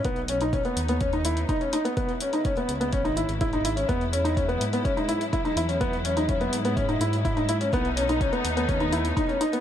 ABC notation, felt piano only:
X:1
M:4/4
L:1/16
Q:1/4=125
K:E
V:1 name="Felt piano"
B,2 C D C B,2 B, C D E2 D C D B, | B,2 C D C B,2 B, C D E2 E D E C | B,2 C D C B,2 B, C D E2 E D E C | B,2 C D C B,2 B, C D E2 E D E C |
B,2 C D C B,2 B, C D E2 D C D B, |]